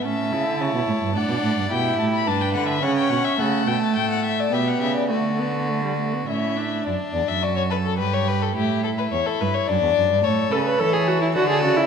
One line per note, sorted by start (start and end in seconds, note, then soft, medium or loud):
0.04 0.33 A2 medium
0.04 0.34 C#4 medium
0.04 0.62 E5 medium
0.04 1.18 A5 medium
0.32 0.48 C#3 medium
0.32 1.16 E4 medium
0.46 0.62 D3 medium
0.60 0.74 C#3 medium
0.60 1.15 C#5 medium
0.74 0.80 B2 medium
0.88 0.93 A2 medium
1.02 1.17 G2 medium
1.15 1.29 A2 medium
1.15 1.70 D4 medium
1.15 1.72 D5 medium
1.15 1.70 F#5 medium
1.29 1.35 B2 medium
1.43 1.57 A2 medium
1.57 1.63 G2 medium
1.70 1.99 B2 medium
1.70 2.28 E4 medium
1.70 2.26 G4 medium
1.70 1.98 G5 medium
1.99 2.29 A2 medium
1.99 2.05 A5 medium
2.13 2.29 B5 medium
2.27 2.57 G2 medium
2.27 2.83 D4 medium
2.27 2.85 B4 medium
2.27 2.42 A5 medium
2.41 2.53 G5 medium
2.54 2.82 D3 medium
2.54 2.68 F#5 medium
2.68 2.84 E5 medium
2.83 3.10 C#3 medium
2.83 3.40 C#4 medium
2.83 3.38 C#5 medium
2.83 2.96 F#5 medium
2.96 3.11 G5 medium
3.10 3.19 B2 medium
3.10 3.26 F#5 medium
3.24 3.40 E5 medium
3.39 3.66 C#3 medium
3.39 4.51 A3 medium
3.39 4.54 A4 medium
3.39 3.69 F#5 medium
3.66 3.74 B2 medium
3.66 3.81 G5 medium
3.82 3.95 A5 medium
3.95 4.51 A2 medium
3.95 4.09 G5 medium
4.11 4.24 F#5 medium
4.25 4.41 E5 medium
4.39 4.55 D5 medium
4.52 4.80 B2 medium
4.52 5.11 B3 medium
4.52 5.10 G4 medium
4.52 4.69 E5 medium
4.68 4.81 F#5 medium
4.81 5.12 C#3 medium
4.81 4.95 E5 medium
4.96 5.10 D5 medium
5.09 6.27 D3 medium
5.09 5.40 A3 medium
5.09 6.29 F#4 medium
5.09 6.26 D5 medium
5.39 5.70 B3 medium
5.68 5.83 A3 medium
5.84 5.97 G3 medium
5.98 6.14 A3 medium
6.13 6.27 B3 medium
6.28 6.85 A2 medium
6.28 6.58 C#4 medium
6.28 6.86 E4 medium
6.28 6.85 E5 medium
6.57 6.85 D4 medium
6.86 6.94 F#2 medium
6.86 7.44 D4 medium
6.86 6.94 D5 medium
7.13 7.28 E2 medium
7.13 7.29 D5 medium
7.28 8.01 F#2 medium
7.28 7.44 E5 medium
7.43 7.72 F#4 medium
7.43 7.55 D5 medium
7.56 7.62 C#5 loud
7.70 7.98 A4 medium
7.70 7.76 B4 medium
7.85 7.97 A4 medium
7.98 8.56 G2 medium
7.98 8.55 G4 medium
7.98 8.15 B4 medium
8.13 8.29 C#5 medium
8.28 8.43 B4 loud
8.42 8.55 A4 medium
8.56 9.11 A2 medium
8.56 9.70 E4 medium
8.56 8.83 G4 medium
8.84 8.89 A4 medium
8.98 9.03 B4 medium
9.12 9.21 E2 medium
9.12 9.27 C#5 medium
9.26 9.42 A4 loud
9.41 9.49 G2 medium
9.41 9.55 B4 medium
9.54 9.69 C#5 loud
9.67 9.82 F#2 medium
9.67 10.24 D4 medium
9.67 10.25 D5 loud
9.82 9.96 E2 medium
9.96 10.10 F#2 medium
10.10 10.24 G2 medium
10.23 10.52 A2 medium
10.23 11.33 A4 medium
10.23 10.53 C#5 medium
10.51 10.80 C#3 medium
10.51 10.57 A4 loud
10.51 10.68 B4 medium
10.66 10.81 B4 loud
10.66 11.34 C#5 medium
10.79 11.37 E3 medium
10.79 10.95 A4 loud
10.93 11.09 G#4 loud
11.07 11.21 F#4 loud
11.21 11.27 E4 loud
11.35 11.64 D3 loud
11.35 11.48 F#4 loud
11.35 11.87 A4 medium
11.35 11.87 D5 medium
11.49 11.63 G#4 loud
11.63 11.87 C#3 medium
11.63 11.78 F#4 loud
11.77 11.87 E4 loud